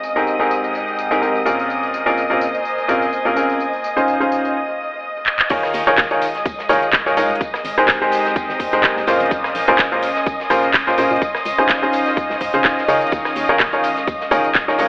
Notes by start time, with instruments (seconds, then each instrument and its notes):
Already playing: analog synth pad G#3 C4 D#5 F5, violin section D#5 D#6
0.03 analog synth pad A#4, tambourine
0.16 grand piano G#2 C4 D#4 G4 G#4 A#4, tambourine
0.27 tambourine
0.39 grand piano G#2 C4 D#4 G4 G#4 A#4, tambourine
0.49 analog synth pad G5, tambourine
0.64 tambourine
0.75 tambourine
0.88 tambourine
0.99 tambourine
1.11 grand piano G#2 C4 D#4 G4 G#4 A#4, tambourine
1.22 grand piano G#2 C4 D#4 G4 G#4 A#4, tambourine
1.36 tambourine
1.45 grand piano A#2 C4 C#4 F4 G#4 A#4, tambourine
1.59 tambourine
1.70 analog synth pad A#3, tambourine
1.83 tambourine
1.94 tambourine
2.06 grand piano A#2 C4 C#4 F4 G#4 A#4, analog synth pad C5, tambourine
2.17 analog synth pad G#5, tambourine
2.30 grand piano A#2 C4 C#4 F4 G#4 A#4, tambourine
2.41 tambourine
2.54 tambourine
2.65 tambourine
2.78 tambourine
2.88 grand piano A#2 C4 C#4 F4 G#4 A#4, tambourine
3.02 tambourine
3.13 tambourine
3.25 grand piano A#2 C4 C#4 F4 G#4 A#4, tambourine
3.36 grand piano C#3 C4 C#4 F4 G#4 A#4, tambourine
3.50 tambourine
3.60 tambourine
3.73 tambourine
3.81 analog synth pad D#5, tambourine
3.97 grand piano C#3 C#4 D#4 F4 G#4 C5, tambourine
4.08 tambourine
4.16 grand piano C#3 C#4 D#4 F4 G#4 C5, analog synth pad F5
4.21 tambourine
4.32 tambourine
4.45 tambourine
5.26 clap
5.39 clap
5.50 fm bass D#2, grand piano D#3 D#4 F4 G#4 A#4 C#5, violin section D#5 D#6, kick, closed hi-hat, tambourine, crash
5.63 cross-stick, snare, tambourine
5.68 analog synth pad G#3
5.74 fm bass D#2, open hi-hat, tambourine
5.87 grand piano D#3 D#4 F4 G#4 A#4 C#5, cross-stick, closed hi-hat, tambourine
5.98 fm bass D#2, kick, snare, clap, closed hi-hat, tambourine
6.11 grand piano D#3 D#4 F4 G#4 A#4 C#5, closed hi-hat, tambourine
6.21 open hi-hat, tambourine
6.35 snare, closed hi-hat, tambourine
6.45 fm bass D#2, kick, closed hi-hat, tambourine
6.59 snare, tambourine
6.69 fm bass D#2, grand piano D#3 D#4 F4 G#4 A#4 C#5, cross-stick, open hi-hat, tambourine
6.82 closed hi-hat, tambourine
6.93 kick, snare, clap, closed hi-hat, tambourine
7.06 grand piano D#3 D#4 F4 G#4 A#4 C#5, snare, tambourine
7.17 fm bass D#1, grand piano G#3 D#4 F4 G#4 A#4 C#5, open hi-hat, tambourine
7.30 fm bass D#1, closed hi-hat, tambourine
7.35 closed hi-hat
7.41 analog synth pad C4, kick, closed hi-hat, tambourine
7.54 cross-stick, snare, tambourine
7.65 fm bass G#1, open hi-hat, tambourine
7.78 grand piano G#3 D#4 G4 G#4 A#4 C5, cross-stick, closed hi-hat, tambourine
7.85 fm bass G#1, analog synth pad G5, kick, snare, clap, closed hi-hat, tambourine
7.95 analog synth pad A#4
8.02 grand piano G#3 D#4 G4 G#4 A#4 C5, tambourine
8.12 open hi-hat, tambourine
8.25 snare, closed hi-hat, tambourine
8.36 kick, closed hi-hat, tambourine
8.49 fm bass G#1, snare, tambourine
8.60 fm bass D#2, kick, open hi-hat, tambourine
8.73 fm bass G#2, grand piano G#3 D#4 G4 G#4 A#4 C5, closed hi-hat, tambourine
8.83 grand piano G#3 G4 G#4, kick, snare, clap, closed hi-hat, tambourine
8.97 fm bass D#2, snare, tambourine
9.07 fm bass G#1, grand piano A#2 C#4 F4 G#4 A#4 C5, open hi-hat, tambourine
9.20 fm bass G#1, closed hi-hat, tambourine
9.26 closed hi-hat
9.31 fm bass A#1, analog synth pad C#4, kick, closed hi-hat, tambourine
9.44 analog synth pad G#5, cross-stick, snare, tambourine
9.55 fm bass A#1, analog synth pad C6, open hi-hat, tambourine
9.67 grand piano A#2 C#4 F4 G#4 A#4 C5, cross-stick, closed hi-hat, tambourine
9.79 fm bass A#1, kick, snare, clap, closed hi-hat, tambourine
9.92 grand piano A#2 C#4 F4 G#4 A#4 C5, closed hi-hat, tambourine
10.02 open hi-hat, tambourine
10.16 snare, closed hi-hat, tambourine
10.26 fm bass A#1, kick, closed hi-hat, tambourine
10.40 snare, tambourine
10.50 fm bass A#1, grand piano A#2 C#4 F4 G#4 A#4 C5, cross-stick, open hi-hat, tambourine
10.63 closed hi-hat, tambourine
10.74 kick, snare, clap, closed hi-hat, tambourine
10.87 grand piano A#2 C#4 F4 G#4 A#4 C5, snare, tambourine
10.98 fm bass A#2, grand piano C#3 C#4 F4 G#4 A#4 C5, open hi-hat, tambourine
11.11 fm bass A#2, closed hi-hat, tambourine
11.16 closed hi-hat
11.22 kick, closed hi-hat, tambourine
11.35 analog synth pad D#5, cross-stick, snare, tambourine
11.45 fm bass C#2, open hi-hat, tambourine
11.58 grand piano C#3 C#4 D#4 F4 G#4 C5, cross-stick, closed hi-hat, tambourine
11.69 fm bass C#2, analog synth pad F5, kick, snare, clap, closed hi-hat, tambourine
11.82 grand piano C#3 C#4 D#4 F4 G#4 C5, tambourine
11.93 open hi-hat, tambourine
12.06 snare, closed hi-hat, tambourine
12.17 kick, closed hi-hat, tambourine
12.30 fm bass C#2, snare, tambourine
12.41 fm bass G#2, kick, open hi-hat, tambourine
12.53 grand piano C#3 C#4 D#4 F4 G#4 C5, fm bass C#3, closed hi-hat, tambourine
12.64 fm bass G#2, grand piano C#3 C#4 D#4 F4 G#4 C5, kick, snare, clap, closed hi-hat, tambourine
12.78 snare, tambourine
12.88 fm bass C#3, grand piano D#3 D#4 F4 G#4 A#4 C#5, open hi-hat, tambourine
13.01 closed hi-hat, tambourine
13.07 closed hi-hat
13.12 fm bass D#2, kick, closed hi-hat, tambourine
13.25 cross-stick, snare, tambourine
13.35 fm bass D#2, analog synth pad G#3, open hi-hat, tambourine
13.49 grand piano D#3 D#4 F4 G#4 A#4 C#5, cross-stick, closed hi-hat, tambourine
13.59 fm bass D#2, kick, snare, clap, closed hi-hat, tambourine
13.72 grand piano D#3 D#4 F4 G#4 A#4 C#5, closed hi-hat, tambourine
13.84 open hi-hat, tambourine
13.96 snare, closed hi-hat, tambourine
14.07 fm bass D#2, kick, closed hi-hat, tambourine
14.21 snare, tambourine
14.31 fm bass D#2, grand piano D#3 D#4 F4 G#4 A#4 C#5, cross-stick, open hi-hat, tambourine
14.44 closed hi-hat, tambourine
14.55 kick, snare, clap, closed hi-hat, tambourine
14.68 grand piano D#3 D#4 F4 G#4 A#4 C#5, snare, tambourine
14.78 fm bass D#1, grand piano G#3 D#4 F4 G#4 A#4 C#5, open hi-hat, tambourine